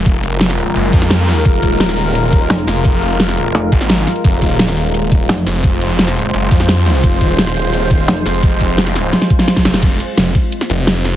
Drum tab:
CC |----------------|----------------|----------------|----------------|
HH |x-x-x-o-x-x-xxox|x-x-x-o-x-x-xxox|x-x-xxo-x-x-xxox|x-x-x-o-x-x-xxox|
SD |----oo-----oo-o-|----oo------o-o-|----oo-----oo-o-|----oo------o-o-|
BD |o---------o-----|o-o-------o-----|o---------o-----|o-o-------o-----|

CC |----------------|----------------|----------------|x---------------|
HH |x-x-x-o-x-x-xxox|x-x-x-o-x-x-xxox|x-x-xxo-x-x-xxox|x-x-x-o-x-x-xxo-|
SD |----oo-----oo-o-|----oo------o-o-|----ooo-oo-ooooo|----o----o--o-o-|
BD |o---------o-----|o-o-------o-----|o-o-------o--o--|o-----o---------|